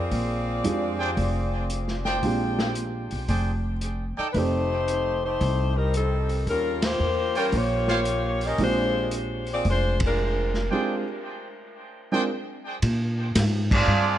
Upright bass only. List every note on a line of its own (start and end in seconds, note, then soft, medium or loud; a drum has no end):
0.11 0.61 A#1 medium
0.65 1.14 F2 medium
1.17 2.19 F1 medium
2.23 3.08 A#1 medium
3.12 3.28 B1 medium
3.28 4.13 F1 medium
4.18 muted upright bass stroke soft
4.34 5.37 F1 medium
5.41 6.43 C2 medium
6.47 6.96 D#2 medium
7.00 7.49 E2 medium
7.52 8.55 A#1 loud
8.58 9.61 A#1 medium
9.65 10.67 F1 medium
12.82 13.34 A#2 medium
13.36 13.87 G#2 loud
13.87 14.18 G2 loud